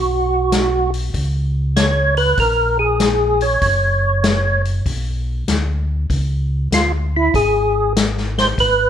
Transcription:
Already playing: tonewheel organ B1 F#4
0.52 snare, closed hi-hat
0.94 open hi-hat
1.14 tonewheel organ C#2, kick, open hi-hat
1.76 tonewheel organ C#5, snare, closed hi-hat
2.17 tonewheel organ B4, open hi-hat
2.37 tonewheel organ A#1 A#4, kick, open hi-hat
2.79 tonewheel organ G#4
3.00 snare, closed hi-hat
3.41 tonewheel organ C#5, open hi-hat
3.61 tonewheel organ F#1, kick, open hi-hat
4.24 snare, closed hi-hat
4.65 open hi-hat
4.85 tonewheel organ B1, kick, open hi-hat
5.48 tonewheel organ D2, snare, closed hi-hat
6.10 tonewheel organ C#2, kick, open hi-hat
6.71 tonewheel organ D2 F4, snare, closed hi-hat
7.16 tonewheel organ E4
7.34 tonewheel organ G#1 G#4, kick, open hi-hat
7.96 snare, closed hi-hat
8.17 snare
8.38 tonewheel organ C5, snare, open hi-hat
8.58 tonewheel organ G#1 B4, kick, open hi-hat

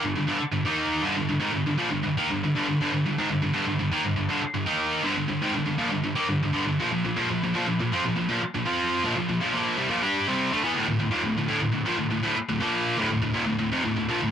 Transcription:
0.03 distorted electric guitar G2 D3
0.16 distorted electric guitar G2 D3
0.28 distorted electric guitar G2 D3
0.40 muted distorted electric guitar stroke
0.53 distorted electric guitar G2 D3
0.66 distorted electric guitar D#3 A#3 D#4
1.03 distorted electric guitar G2 D3
1.17 distorted electric guitar G2 D3
1.29 distorted electric guitar G2 D3
1.40 distorted electric guitar G#2 D#3
1.53 distorted electric guitar G2 D3
1.67 distorted electric guitar G2 D3
1.78 distorted electric guitar A#2 F3
1.91 distorted electric guitar G2 D3
2.03 distorted electric guitar G2 D3
2.17 distorted electric guitar D#3 A#3
2.30 distorted electric guitar G2 D3
2.43 distorted electric guitar G2 D3
2.55 distorted electric guitar G2 D3
2.68 distorted electric guitar G2 D3
2.81 distorted electric guitar G2 D3
2.93 distorted electric guitar G2 D3
3.06 distorted electric guitar G2 D3
3.18 distorted electric guitar G#2 D#3
3.30 distorted electric guitar G2 D3
3.42 distorted electric guitar G2 D3
3.53 distorted electric guitar G2 D3
3.66 distorted electric guitar G2 D3
3.79 distorted electric guitar G2 D3
3.92 distorted electric guitar D#3 A#3
4.05 distorted electric guitar G2 D3
4.16 distorted electric guitar G2 D3
4.29 distorted electric guitar G2 D3
4.43 muted distorted electric guitar stroke
4.54 distorted electric guitar G2 D3
4.67 distorted electric guitar D#3 A#3 D#4
5.03 distorted electric guitar G2 D3
5.17 distorted electric guitar G2 D3
5.29 distorted electric guitar G2 D3
5.42 distorted electric guitar G#2 D#3
5.55 distorted electric guitar G2 D3
5.66 distorted electric guitar G2 D3
5.78 distorted electric guitar A#2 F3
5.92 distorted electric guitar G2 D3
6.04 distorted electric guitar G2 D3
6.16 distorted electric guitar D#3 A#3
6.29 distorted electric guitar G2 D3
6.43 distorted electric guitar G2 D3
6.53 distorted electric guitar G2 D3
6.65 distorted electric guitar G2 D3
6.80 distorted electric guitar A#2 F3
6.92 distorted electric guitar A#2 F3
7.05 distorted electric guitar A#2 F3
7.16 distorted electric guitar A#2 F3
7.29 distorted electric guitar A#2 F3
7.43 distorted electric guitar A#2 F3
7.54 distorted electric guitar A#2 F3
7.67 distorted electric guitar A#2 F3
7.79 distorted electric guitar A#2 F3
7.92 distorted electric guitar F3 C4
8.04 distorted electric guitar A#2 F3
8.16 distorted electric guitar A#2 F3
8.29 distorted electric guitar A#2 F3
8.42 muted distorted electric guitar stroke
8.55 distorted electric guitar A#2 F3
8.66 distorted electric guitar F3 C4 F4
9.04 distorted electric guitar A#2 F3
9.16 distorted electric guitar A#2 F3
9.29 distorted electric guitar A#2 F3
9.40 distorted electric guitar A#2 F3
9.53 distorted electric guitar A#2 F3 A#3
9.77 distorted electric guitar C3 G3
9.89 distorted electric guitar A#2 F3
10.02 distorted electric guitar G3 D4 G4
10.27 distorted electric guitar C3 G3 C4
10.52 distorted electric guitar D3 A3
10.63 distorted electric guitar E3 B3
10.74 distorted electric guitar D2 A2
10.87 distorted electric guitar D2 A2
10.99 distorted electric guitar D2 A2
11.11 distorted electric guitar D#2 A#2
11.23 distorted electric guitar D2 A2
11.37 distorted electric guitar D2 A2
11.48 distorted electric guitar D2 A2
11.61 distorted electric guitar D2 A2
11.72 distorted electric guitar D2 A2
11.85 distorted electric guitar A#2 F3
11.98 distorted electric guitar D2 A2
12.10 distorted electric guitar D2 A2
12.23 distorted electric guitar D2 A2
12.36 muted distorted electric guitar stroke
12.49 distorted electric guitar D2 A2
12.60 distorted electric guitar A#2 F3 A#3
12.98 distorted electric guitar D2 A2
13.11 distorted electric guitar D2 A2
13.22 distorted electric guitar D2 A2
13.34 distorted electric guitar D#2 A#2
13.47 distorted electric guitar D2 A2
13.59 distorted electric guitar D2 A2
13.72 distorted electric guitar F2 C3
13.84 distorted electric guitar D2 A2
13.97 distorted electric guitar D2 A2
14.09 distorted electric guitar A#2 F3
14.21 distorted electric guitar D2 A2

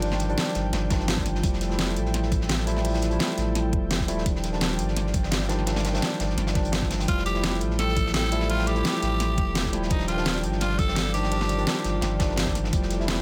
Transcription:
Already playing: sub bass G1, tine electric piano D#3 F3 G3 D4, analog synth pad F4 D5 G5
0.02 tine electric piano D#3 F3 G3 D4, closed hi-hat, open hi-hat
0.12 snare
0.20 snare, closed hi-hat
0.28 tine electric piano D#3 F3 G3 D4, closed hi-hat
0.38 snare, closed hi-hat
0.55 sub bass G1, snare, closed hi-hat
0.73 sub bass G1, snare, closed hi-hat
0.89 tine electric piano D#3 F3 G3 D4, kick, snare, closed hi-hat
1.00 snare
1.08 snare, closed hi-hat
1.17 kick, snare
1.26 snare, closed hi-hat
1.35 snare
1.43 sub bass F1, tine electric piano F3 G3 A3 E4, analog synth pad E4 A4, kick, closed hi-hat
1.53 snare
1.61 snare, closed hi-hat
1.69 tine electric piano F3 G3 A3 E4, snare
1.79 snare, closed hi-hat
1.96 sub bass A1, closed hi-hat
2.05 snare
2.14 snare, closed hi-hat
2.23 snare
2.32 kick, closed hi-hat
2.41 snare
2.49 snare, closed hi-hat
2.59 snare
2.66 tine electric piano F3 G3 A3 E4, snare, closed hi-hat
2.76 snare
2.84 tine electric piano F3 G3 A3 E4, closed hi-hat, open hi-hat
2.94 snare
3.02 snare, closed hi-hat
3.10 tine electric piano F3 G3 A3 E4, closed hi-hat
3.19 snare, closed hi-hat
3.38 sub bass A1, snare, closed hi-hat
3.55 snare, closed hi-hat
3.73 sub bass F1, kick, closed hi-hat
3.91 snare, closed hi-hat
4.00 kick, snare
4.08 sub bass D#1, tine electric piano F3 G3 A3 E4, snare, closed hi-hat
4.18 snare
4.25 tine electric piano D#3 F3 G3 D4, analog synth pad F4 D5 G5, kick, closed hi-hat
4.36 snare
4.44 snare, closed hi-hat
4.52 tine electric piano D#3 F3 G3 D4, snare
4.61 snare, closed hi-hat
4.79 sub bass G1, closed hi-hat
4.88 snare
4.96 snare, closed hi-hat
5.07 snare
5.14 kick, closed hi-hat
5.23 snare
5.31 snare, closed hi-hat
5.41 snare
5.49 tine electric piano D#3 F3 G3 D4, snare, closed hi-hat
5.59 snare
5.66 tine electric piano D#3 F3 G3 D4, snare, closed hi-hat
5.76 snare, closed hi-hat
5.85 snare, closed hi-hat
5.93 tine electric piano D#3 F3 G3 D4, snare, closed hi-hat
6.02 snare, closed hi-hat
6.20 sub bass G1, snare, closed hi-hat
6.30 snare
6.38 sub bass G1, snare, closed hi-hat
6.47 snare, closed hi-hat
6.54 tine electric piano D#3 F3 G3 D4, kick, snare, closed hi-hat
6.65 closed hi-hat
6.72 snare, closed hi-hat
6.82 kick, snare
6.91 snare, closed hi-hat
6.99 snare, closed hi-hat
7.08 sub bass F1, tine electric piano F3 G3 A3 E4, analog synth pad E4 A4, tenor saxophone F4, kick, closed hi-hat
7.18 snare
7.26 tenor saxophone G4, snare, closed hi-hat
7.34 tine electric piano F3 G3 A3 E4, snare
7.43 snare, closed hi-hat
7.61 sub bass A1, closed hi-hat
7.71 snare
7.79 tenor saxophone A4, snare, closed hi-hat
7.89 snare
7.96 kick, closed hi-hat
8.06 snare
8.14 tenor saxophone A4, snare, closed hi-hat
8.24 snare
8.31 tine electric piano F3 G3 A3 E4, snare, closed hi-hat
8.41 snare
8.49 tine electric piano F3 G3 A3 E4, tenor saxophone F4, closed hi-hat, open hi-hat
8.59 snare
8.67 tenor saxophone G4, snare, closed hi-hat
8.75 tine electric piano F3 G3 A3 E4, closed hi-hat
8.84 snare, closed hi-hat
9.02 sub bass A1, snare, closed hi-hat
9.20 snare, closed hi-hat
9.38 sub bass F1, kick, closed hi-hat
9.55 snare, closed hi-hat
9.65 kick, snare
9.72 sub bass D#1, tine electric piano F3 G3 A3 E4, snare, closed hi-hat
9.82 snare
9.90 tine electric piano D#3 F3 G3 D4, tenor saxophone D#4, analog synth pad F4 D5, kick, closed hi-hat
9.99 snare
10.08 tenor saxophone F4, snare, closed hi-hat
10.16 tine electric piano D#3 F3 G3 D4, snare
10.25 snare, closed hi-hat
10.43 sub bass G1, closed hi-hat
10.52 snare
10.61 tenor saxophone F4, snare, closed hi-hat
10.70 snare
10.79 tenor saxophone A4, kick, closed hi-hat
10.88 snare
10.96 snare, closed hi-hat
11.06 snare
11.14 tine electric piano D#3 F3 G3 D4, tenor saxophone G4, snare, closed hi-hat
11.23 snare
11.31 tine electric piano D#3 F3 G3 D4, closed hi-hat, open hi-hat
11.41 snare
11.49 snare, closed hi-hat
11.58 tine electric piano D#3 F3 G3 D4, closed hi-hat
11.67 snare, closed hi-hat
11.84 sub bass G1, snare, closed hi-hat
12.01 sub bass G1, snare, closed hi-hat
12.19 tine electric piano D#3 F3 G3 D4, kick, snare, closed hi-hat
12.29 snare
12.36 snare, closed hi-hat
12.47 kick, snare
12.55 snare, closed hi-hat
12.64 snare
12.72 sub bass F1, tine electric piano F3 G3 A3 E4, analog synth pad E4 A4 G5, kick, closed hi-hat
12.83 snare
12.90 snare, closed hi-hat
12.99 tine electric piano F3 G3 A3 E4, snare
13.08 snare, closed hi-hat

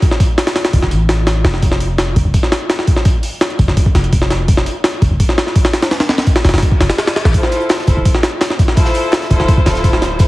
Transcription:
0.02 kick, open hi-hat
0.11 snare
0.20 kick, open hi-hat
0.38 snare, open hi-hat
0.47 snare, open hi-hat
0.56 snare, open hi-hat
0.65 snare, open hi-hat
0.73 808-style bass D1, kick, open hi-hat
0.82 808-style bass D1, snare
0.91 808-style bass A1, open hi-hat
1.09 snare, open hi-hat
1.27 snare, open hi-hat
1.44 808-style bass F1, snare, open hi-hat
1.54 snare
1.62 kick, open hi-hat
1.71 snare
1.80 open hi-hat
1.98 snare, open hi-hat
2.16 808-style bass F1, kick, open hi-hat
2.25 808-style bass F1
2.34 kick, open hi-hat
2.43 snare
2.52 snare, open hi-hat
2.70 snare, open hi-hat
2.79 snare
2.88 kick, open hi-hat
2.96 snare
3.05 kick, open hi-hat
3.23 open hi-hat
3.41 snare, open hi-hat
3.50 closed hi-hat
3.59 808-style bass F1, kick, open hi-hat
3.68 808-style bass F1, snare
3.77 kick, open hi-hat
3.86 kick
3.95 808-style bass F1, snare, open hi-hat
4.04 closed hi-hat
4.13 kick, open hi-hat
4.22 snare
4.30 snare, open hi-hat
4.48 kick, open hi-hat
4.57 snare
4.66 open hi-hat
4.84 snare, open hi-hat
5.02 808-style bass F1, kick, open hi-hat
5.11 808-style bass F1
5.20 kick, open hi-hat
5.29 snare
5.38 snare, open hi-hat
5.47 snare
5.55 kick, open hi-hat
5.65 snare, open hi-hat
5.73 snare, open hi-hat
5.82 snare, open hi-hat
5.91 snare, open hi-hat
6.00 snare, open hi-hat
6.09 snare, open hi-hat
6.18 snare, open hi-hat
6.27 kick, open hi-hat
6.36 snare, open hi-hat
6.45 808-style bass F1, snare, open hi-hat
6.49 snare, open hi-hat
6.53 808-style bass F1, snare, open hi-hat
6.58 snare, open hi-hat
6.63 kick, open hi-hat, reverse cymbal
6.72 kick
6.80 808-style bass F1, snare, open hi-hat
6.90 snare, open hi-hat
6.98 snare, open hi-hat
7.07 snare, open hi-hat
7.16 snare, open hi-hat
7.25 808-style bass A1, snare, open hi-hat
7.34 string section E4 F4 A4 C5, kick, closed hi-hat, open hi-hat
7.43 snare
7.52 closed hi-hat, open hi-hat
7.60 closed hi-hat
7.69 snare, closed hi-hat, open hi-hat
7.79 snare
7.87 808-style bass D1, string section E4 F4 A4 C5, kick, closed hi-hat, open hi-hat
7.96 808-style bass D1
8.05 kick, closed hi-hat, open hi-hat
8.15 snare
8.23 snare, closed hi-hat, open hi-hat
8.41 snare, closed hi-hat, open hi-hat
8.50 snare, closed hi-hat
8.59 kick, closed hi-hat, open hi-hat
8.68 snare
8.76 string section E4 F4 A4 C5, kick, closed hi-hat, open hi-hat
8.85 snare
8.94 closed hi-hat, open hi-hat
9.12 snare, closed hi-hat, open hi-hat
9.22 snare, closed hi-hat
9.30 808-style bass D1, string section E4 F4 A4 C5, kick, closed hi-hat, open hi-hat
9.39 808-style bass D1, snare
9.48 kick, closed hi-hat, open hi-hat
9.57 kick
9.66 808-style bass D1, string section E4 F4 A4 C5, snare, closed hi-hat, open hi-hat
9.75 snare, closed hi-hat
9.84 kick, closed hi-hat, open hi-hat
9.93 snare
10.02 snare, closed hi-hat, open hi-hat
10.19 string section E4 F4 A4 C5, kick, closed hi-hat, open hi-hat

